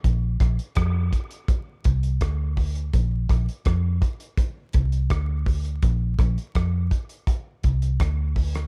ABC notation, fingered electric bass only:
X:1
M:4/4
L:1/16
Q:1/4=83
K:Bblyd
V:1 name="Fingered electric bass" clef=bass
B,,,2 B,,, z F,,2 z4 C,,2 D,,4 | B,,,2 B,,, z F,,2 z4 C,,2 D,,4 | B,,,2 B,,, z F,,2 z4 C,,2 D,,4 |]